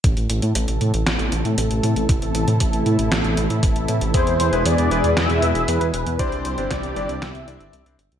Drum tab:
HH |xxxxxxxxxxxxxxxx|xxxxxxxxxxxxxxxx|xxxxxxxxxxxxxxxx|xxxxxxxxxxxxxxxx|
SD |--------o-------|--------o-------|--------o-------|----o---o-------|
BD |o---------------|o---o-------o---|o---------------|o---o-----------|